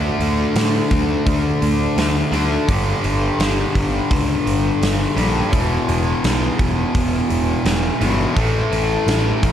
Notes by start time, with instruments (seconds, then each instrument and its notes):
Already playing: distorted electric guitar D3 A3 D4
0.20 picked electric bass D2, open hi-hat
0.55 picked electric bass A2, snare, open hi-hat
0.91 picked electric bass D2, kick, open hi-hat
1.27 picked electric bass D2, kick, open hi-hat
1.62 picked electric bass D2, open hi-hat
1.97 picked electric bass D2, snare, open hi-hat
2.32 picked electric bass D2, distorted electric guitar D3 A3 D4, open hi-hat
2.67 picked electric bass G1, distorted electric guitar G2 D3 G3, kick, open hi-hat
3.04 picked electric bass G1, open hi-hat
3.39 picked electric bass G1, snare, open hi-hat
3.75 picked electric bass G1, kick, open hi-hat
4.11 picked electric bass C#2, kick, open hi-hat
4.46 picked electric bass G1, open hi-hat
4.81 picked electric bass G1, snare, open hi-hat
5.16 picked electric bass A#1, distorted electric guitar G2 D3 G3, open hi-hat
5.50 picked electric bass E1, distorted electric guitar E2 B2 E3, kick, open hi-hat
5.88 picked electric bass E1, open hi-hat
6.24 picked electric bass B1, snare, open hi-hat
6.59 picked electric bass E1, kick, open hi-hat
6.95 picked electric bass E1, kick, open hi-hat
7.30 picked electric bass E1, open hi-hat
7.65 picked electric bass E1, snare, open hi-hat
8.00 picked electric bass G1, distorted electric guitar E2 B2 E3, open hi-hat
8.35 picked electric bass A1, distorted electric guitar A2 E3 A3, kick, open hi-hat
8.71 picked electric bass A1, open hi-hat
9.07 picked electric bass A1, snare, open hi-hat
9.43 picked electric bass A1, kick, open hi-hat